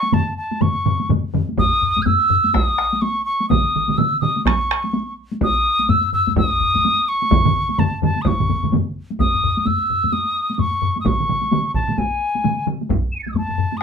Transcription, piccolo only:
0, 0, Header, 1, 2, 480
1, 0, Start_track
1, 0, Tempo, 479616
1, 1585, Time_signature, 4, 2, 24, 8
1, 6849, Tempo, 469116
1, 10209, Tempo, 461894
1, 14056, End_track
2, 0, Start_track
2, 0, Title_t, "Piccolo"
2, 0, Program_c, 0, 72
2, 0, Note_on_c, 0, 85, 78
2, 136, Note_on_c, 0, 81, 69
2, 151, Note_off_c, 0, 85, 0
2, 368, Note_off_c, 0, 81, 0
2, 374, Note_on_c, 0, 81, 66
2, 615, Note_on_c, 0, 85, 73
2, 630, Note_off_c, 0, 81, 0
2, 1101, Note_off_c, 0, 85, 0
2, 1591, Note_on_c, 0, 87, 91
2, 2024, Note_on_c, 0, 92, 64
2, 2039, Note_off_c, 0, 87, 0
2, 2060, Note_on_c, 0, 88, 87
2, 2075, Note_off_c, 0, 92, 0
2, 2537, Note_on_c, 0, 87, 85
2, 2552, Note_off_c, 0, 88, 0
2, 3017, Note_on_c, 0, 85, 74
2, 3032, Note_off_c, 0, 87, 0
2, 3251, Note_off_c, 0, 85, 0
2, 3257, Note_on_c, 0, 85, 80
2, 3487, Note_off_c, 0, 85, 0
2, 3497, Note_on_c, 0, 87, 82
2, 3978, Note_on_c, 0, 88, 80
2, 3993, Note_off_c, 0, 87, 0
2, 4205, Note_off_c, 0, 88, 0
2, 4211, Note_on_c, 0, 87, 79
2, 4442, Note_off_c, 0, 87, 0
2, 4460, Note_on_c, 0, 85, 71
2, 5141, Note_off_c, 0, 85, 0
2, 5439, Note_on_c, 0, 87, 92
2, 5899, Note_on_c, 0, 88, 85
2, 5914, Note_off_c, 0, 87, 0
2, 6132, Note_off_c, 0, 88, 0
2, 6138, Note_on_c, 0, 88, 85
2, 6358, Note_off_c, 0, 88, 0
2, 6377, Note_on_c, 0, 87, 91
2, 7096, Note_on_c, 0, 85, 90
2, 7111, Note_off_c, 0, 87, 0
2, 7819, Note_on_c, 0, 81, 73
2, 7834, Note_off_c, 0, 85, 0
2, 8056, Note_off_c, 0, 81, 0
2, 8068, Note_on_c, 0, 81, 68
2, 8255, Note_on_c, 0, 87, 55
2, 8271, Note_off_c, 0, 81, 0
2, 8312, Note_on_c, 0, 85, 72
2, 8327, Note_off_c, 0, 87, 0
2, 8783, Note_off_c, 0, 85, 0
2, 9257, Note_on_c, 0, 87, 77
2, 9735, Note_on_c, 0, 88, 76
2, 9750, Note_off_c, 0, 87, 0
2, 10208, Note_on_c, 0, 87, 78
2, 10223, Note_off_c, 0, 88, 0
2, 10643, Note_off_c, 0, 87, 0
2, 10643, Note_on_c, 0, 87, 54
2, 10692, Note_on_c, 0, 85, 74
2, 10707, Note_off_c, 0, 87, 0
2, 11117, Note_off_c, 0, 85, 0
2, 11123, Note_on_c, 0, 87, 58
2, 11182, Note_on_c, 0, 85, 72
2, 11198, Note_off_c, 0, 87, 0
2, 11887, Note_off_c, 0, 85, 0
2, 11893, Note_on_c, 0, 81, 66
2, 12136, Note_on_c, 0, 80, 62
2, 12151, Note_off_c, 0, 81, 0
2, 12854, Note_off_c, 0, 80, 0
2, 13318, Note_on_c, 0, 100, 28
2, 13352, Note_off_c, 0, 100, 0
2, 13358, Note_on_c, 0, 99, 32
2, 13388, Note_off_c, 0, 99, 0
2, 13394, Note_on_c, 0, 97, 33
2, 13427, Note_off_c, 0, 97, 0
2, 13433, Note_on_c, 0, 93, 37
2, 13462, Note_off_c, 0, 93, 0
2, 13468, Note_on_c, 0, 92, 38
2, 13489, Note_off_c, 0, 92, 0
2, 13492, Note_on_c, 0, 88, 38
2, 13513, Note_off_c, 0, 88, 0
2, 13518, Note_on_c, 0, 87, 42
2, 13540, Note_off_c, 0, 87, 0
2, 13547, Note_on_c, 0, 85, 46
2, 13572, Note_off_c, 0, 85, 0
2, 13578, Note_on_c, 0, 81, 65
2, 13997, Note_on_c, 0, 87, 61
2, 14012, Note_off_c, 0, 81, 0
2, 14056, Note_off_c, 0, 87, 0
2, 14056, End_track
0, 0, End_of_file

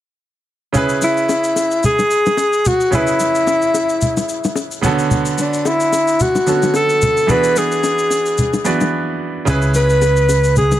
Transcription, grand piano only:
0, 0, Header, 1, 2, 480
1, 0, Start_track
1, 0, Tempo, 545455
1, 656, Time_signature, 4, 2, 24, 8
1, 9501, End_track
2, 0, Start_track
2, 0, Title_t, "Grand piano"
2, 0, Program_c, 0, 0
2, 638, Note_on_c, 0, 49, 75
2, 649, Note_on_c, 0, 61, 68
2, 658, Note_on_c, 0, 64, 67
2, 669, Note_on_c, 0, 68, 69
2, 679, Note_on_c, 0, 71, 83
2, 827, Control_c, 0, 64, 127
2, 2532, Note_off_c, 0, 49, 0
2, 2538, Note_off_c, 0, 61, 0
2, 2542, Note_off_c, 0, 64, 0
2, 2548, Note_off_c, 0, 68, 0
2, 2553, Note_off_c, 0, 71, 0
2, 2558, Note_on_c, 0, 49, 64
2, 2568, Note_on_c, 0, 61, 60
2, 2578, Note_on_c, 0, 64, 58
2, 2589, Note_on_c, 0, 68, 55
2, 2598, Note_on_c, 0, 71, 73
2, 4214, Note_off_c, 0, 49, 0
2, 4219, Note_off_c, 0, 61, 0
2, 4224, Note_off_c, 0, 64, 0
2, 4229, Note_off_c, 0, 68, 0
2, 4234, Note_off_c, 0, 71, 0
2, 4236, Note_on_c, 0, 49, 63
2, 4245, Note_on_c, 0, 59, 70
2, 4255, Note_on_c, 0, 61, 70
2, 4265, Note_on_c, 0, 66, 71
2, 4267, Control_c, 0, 64, 0
2, 4275, Note_on_c, 0, 69, 84
2, 4292, Note_on_c, 0, 50, 76
2, 4309, Note_off_c, 0, 49, 0
2, 4398, Control_c, 0, 64, 127
2, 5662, Note_off_c, 0, 59, 0
2, 5667, Note_off_c, 0, 61, 0
2, 5672, Note_off_c, 0, 66, 0
2, 5674, Note_off_c, 0, 50, 0
2, 5677, Note_off_c, 0, 69, 0
2, 5687, Note_on_c, 0, 50, 47
2, 5691, Note_on_c, 0, 59, 44
2, 5696, Note_on_c, 0, 61, 46
2, 5701, Note_on_c, 0, 66, 44
2, 5707, Note_on_c, 0, 69, 52
2, 6392, Note_off_c, 0, 59, 0
2, 6395, Note_on_c, 0, 52, 65
2, 6405, Note_on_c, 0, 59, 56
2, 6412, Note_off_c, 0, 50, 0
2, 6412, Note_off_c, 0, 66, 0
2, 6415, Note_on_c, 0, 62, 58
2, 6416, Note_off_c, 0, 61, 0
2, 6422, Note_off_c, 0, 69, 0
2, 6425, Note_on_c, 0, 66, 58
2, 6427, Control_c, 0, 64, 0
2, 6435, Note_on_c, 0, 68, 71
2, 6584, Control_c, 0, 64, 127
2, 7581, Note_off_c, 0, 52, 0
2, 7587, Note_off_c, 0, 59, 0
2, 7592, Note_off_c, 0, 62, 0
2, 7597, Note_off_c, 0, 66, 0
2, 7602, Note_off_c, 0, 68, 0
2, 7606, Note_on_c, 0, 52, 55
2, 7610, Note_on_c, 0, 59, 52
2, 7616, Note_on_c, 0, 62, 51
2, 7621, Note_on_c, 0, 66, 52
2, 7625, Note_on_c, 0, 71, 62
2, 8317, Note_on_c, 0, 49, 78
2, 8326, Note_on_c, 0, 61, 69
2, 8331, Note_off_c, 0, 52, 0
2, 8333, Note_off_c, 0, 59, 0
2, 8336, Note_off_c, 0, 62, 0
2, 8337, Note_on_c, 0, 64, 66
2, 8339, Note_off_c, 0, 66, 0
2, 8341, Note_off_c, 0, 71, 0
2, 8347, Note_on_c, 0, 68, 69
2, 8349, Control_c, 0, 64, 0
2, 8357, Note_on_c, 0, 71, 83
2, 8506, Control_c, 0, 64, 127
2, 9501, Note_off_c, 0, 49, 0
2, 9501, Note_off_c, 0, 61, 0
2, 9501, Note_off_c, 0, 64, 0
2, 9501, Note_off_c, 0, 68, 0
2, 9501, Note_off_c, 0, 71, 0
2, 9501, End_track
0, 0, End_of_file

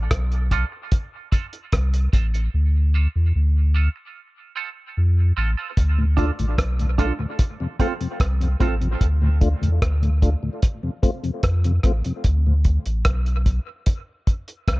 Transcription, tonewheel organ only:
0, 0, Header, 1, 2, 480
1, 0, Start_track
1, 0, Tempo, 809717
1, 1503, Time_signature, 4, 2, 24, 8
1, 8773, End_track
2, 0, Start_track
2, 0, Title_t, "Tonewheel organ"
2, 0, Program_c, 0, 16
2, 3548, Note_on_c, 0, 38, 56
2, 3548, Note_on_c, 0, 45, 56
2, 3589, Note_off_c, 0, 38, 0
2, 3589, Note_off_c, 0, 45, 0
2, 3664, Note_on_c, 0, 57, 73
2, 3665, Note_on_c, 0, 62, 73
2, 3667, Note_on_c, 0, 65, 87
2, 3708, Note_off_c, 0, 57, 0
2, 3708, Note_off_c, 0, 62, 0
2, 3709, Note_off_c, 0, 65, 0
2, 3789, Note_on_c, 0, 38, 61
2, 3790, Note_on_c, 0, 45, 60
2, 3829, Note_off_c, 0, 38, 0
2, 3830, Note_off_c, 0, 45, 0
2, 4028, Note_on_c, 0, 45, 58
2, 4029, Note_on_c, 0, 38, 52
2, 4069, Note_off_c, 0, 38, 0
2, 4069, Note_off_c, 0, 45, 0
2, 4141, Note_on_c, 0, 57, 76
2, 4141, Note_on_c, 0, 62, 72
2, 4143, Note_on_c, 0, 65, 85
2, 4186, Note_off_c, 0, 57, 0
2, 4186, Note_off_c, 0, 62, 0
2, 4187, Note_off_c, 0, 65, 0
2, 4262, Note_on_c, 0, 45, 51
2, 4265, Note_on_c, 0, 38, 54
2, 4306, Note_off_c, 0, 45, 0
2, 4307, Note_off_c, 0, 38, 0
2, 4507, Note_on_c, 0, 41, 56
2, 4507, Note_on_c, 0, 48, 59
2, 4548, Note_off_c, 0, 41, 0
2, 4548, Note_off_c, 0, 48, 0
2, 4622, Note_on_c, 0, 57, 75
2, 4626, Note_on_c, 0, 60, 67
2, 4628, Note_on_c, 0, 65, 83
2, 4667, Note_off_c, 0, 57, 0
2, 4668, Note_off_c, 0, 60, 0
2, 4669, Note_off_c, 0, 65, 0
2, 4746, Note_on_c, 0, 48, 53
2, 4747, Note_on_c, 0, 41, 60
2, 4788, Note_off_c, 0, 41, 0
2, 4788, Note_off_c, 0, 48, 0
2, 4981, Note_on_c, 0, 48, 62
2, 4984, Note_on_c, 0, 41, 65
2, 5025, Note_off_c, 0, 48, 0
2, 5027, Note_off_c, 0, 41, 0
2, 5096, Note_on_c, 0, 57, 71
2, 5098, Note_on_c, 0, 60, 65
2, 5101, Note_on_c, 0, 65, 81
2, 5143, Note_off_c, 0, 57, 0
2, 5144, Note_off_c, 0, 60, 0
2, 5146, Note_off_c, 0, 65, 0
2, 5221, Note_on_c, 0, 41, 60
2, 5222, Note_on_c, 0, 48, 59
2, 5265, Note_off_c, 0, 41, 0
2, 5266, Note_off_c, 0, 48, 0
2, 5464, Note_on_c, 0, 38, 64
2, 5466, Note_on_c, 0, 45, 58
2, 5507, Note_off_c, 0, 38, 0
2, 5508, Note_off_c, 0, 45, 0
2, 5577, Note_on_c, 0, 57, 74
2, 5578, Note_on_c, 0, 62, 65
2, 5580, Note_on_c, 0, 65, 80
2, 5624, Note_off_c, 0, 57, 0
2, 5624, Note_off_c, 0, 62, 0
2, 5626, Note_off_c, 0, 65, 0
2, 5700, Note_on_c, 0, 38, 59
2, 5703, Note_on_c, 0, 45, 59
2, 5745, Note_off_c, 0, 38, 0
2, 5746, Note_off_c, 0, 45, 0
2, 5942, Note_on_c, 0, 38, 60
2, 5942, Note_on_c, 0, 45, 55
2, 5985, Note_off_c, 0, 38, 0
2, 5986, Note_off_c, 0, 45, 0
2, 6058, Note_on_c, 0, 57, 71
2, 6059, Note_on_c, 0, 62, 65
2, 6061, Note_on_c, 0, 65, 81
2, 6104, Note_off_c, 0, 57, 0
2, 6105, Note_off_c, 0, 62, 0
2, 6106, Note_off_c, 0, 65, 0
2, 6182, Note_on_c, 0, 38, 51
2, 6182, Note_on_c, 0, 45, 53
2, 6225, Note_off_c, 0, 45, 0
2, 6226, Note_off_c, 0, 38, 0
2, 6421, Note_on_c, 0, 41, 56
2, 6422, Note_on_c, 0, 48, 54
2, 6465, Note_off_c, 0, 41, 0
2, 6466, Note_off_c, 0, 48, 0
2, 6535, Note_on_c, 0, 57, 70
2, 6536, Note_on_c, 0, 60, 67
2, 6540, Note_on_c, 0, 65, 79
2, 6583, Note_off_c, 0, 57, 0
2, 6584, Note_off_c, 0, 60, 0
2, 6585, Note_off_c, 0, 65, 0
2, 6660, Note_on_c, 0, 48, 60
2, 6662, Note_on_c, 0, 41, 59
2, 6705, Note_off_c, 0, 48, 0
2, 6706, Note_off_c, 0, 41, 0
2, 6907, Note_on_c, 0, 48, 66
2, 6908, Note_on_c, 0, 41, 65
2, 6948, Note_off_c, 0, 41, 0
2, 6948, Note_off_c, 0, 48, 0
2, 7024, Note_on_c, 0, 60, 67
2, 7025, Note_on_c, 0, 57, 72
2, 7028, Note_on_c, 0, 65, 84
2, 7067, Note_off_c, 0, 60, 0
2, 7068, Note_off_c, 0, 57, 0
2, 7069, Note_off_c, 0, 65, 0
2, 7147, Note_on_c, 0, 48, 59
2, 7148, Note_on_c, 0, 41, 61
2, 7188, Note_off_c, 0, 48, 0
2, 7189, Note_off_c, 0, 41, 0
2, 7389, Note_on_c, 0, 45, 58
2, 7390, Note_on_c, 0, 38, 57
2, 7429, Note_off_c, 0, 45, 0
2, 7430, Note_off_c, 0, 38, 0
2, 8773, End_track
0, 0, End_of_file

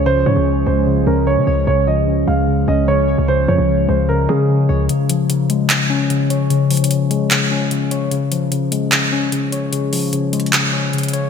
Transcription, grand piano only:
0, 0, Header, 1, 2, 480
1, 0, Start_track
1, 0, Key_signature, -5, "major"
1, 0, Tempo, 402685
1, 73, Time_signature, 4, 2, 24, 8
1, 13466, End_track
2, 0, Start_track
2, 0, Title_t, "Grand piano"
2, 0, Program_c, 0, 0
2, 73, Note_on_c, 0, 72, 103
2, 282, Note_off_c, 0, 72, 0
2, 312, Note_on_c, 0, 73, 76
2, 764, Note_off_c, 0, 73, 0
2, 793, Note_on_c, 0, 72, 83
2, 1244, Note_off_c, 0, 72, 0
2, 1273, Note_on_c, 0, 70, 73
2, 1482, Note_off_c, 0, 70, 0
2, 1512, Note_on_c, 0, 73, 82
2, 1964, Note_off_c, 0, 73, 0
2, 1993, Note_on_c, 0, 73, 84
2, 2202, Note_off_c, 0, 73, 0
2, 2232, Note_on_c, 0, 75, 73
2, 2684, Note_off_c, 0, 75, 0
2, 2713, Note_on_c, 0, 77, 75
2, 3164, Note_off_c, 0, 77, 0
2, 3193, Note_on_c, 0, 75, 76
2, 3402, Note_off_c, 0, 75, 0
2, 3433, Note_on_c, 0, 73, 88
2, 3884, Note_off_c, 0, 73, 0
2, 3913, Note_on_c, 0, 72, 95
2, 4122, Note_off_c, 0, 72, 0
2, 4153, Note_on_c, 0, 73, 79
2, 4604, Note_off_c, 0, 73, 0
2, 4632, Note_on_c, 0, 72, 79
2, 4842, Note_off_c, 0, 72, 0
2, 4873, Note_on_c, 0, 70, 78
2, 5082, Note_off_c, 0, 70, 0
2, 5113, Note_on_c, 0, 68, 77
2, 5790, Note_off_c, 0, 68, 0
2, 13466, End_track
0, 0, End_of_file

